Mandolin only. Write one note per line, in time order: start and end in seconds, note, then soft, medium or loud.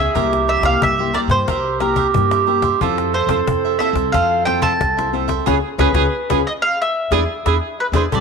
0.00 0.48 E5 medium
0.49 0.64 E5 loud
0.65 0.81 F5 medium
0.83 1.17 E5 medium
1.15 1.20 D5 medium
1.31 1.81 C5 medium
1.81 2.44 A#4 medium
3.14 3.77 C5 medium
3.79 3.88 E5 medium
4.12 4.44 F5 medium
4.45 4.62 G5 medium
4.62 5.09 A5 loud
5.81 6.43 B4 medium
6.47 6.52 D#5 medium
6.62 6.78 F5 loud
6.82 7.76 E5 medium
7.80 7.85 B4 medium
7.96 8.01 C5 medium
8.15 8.20 D5 medium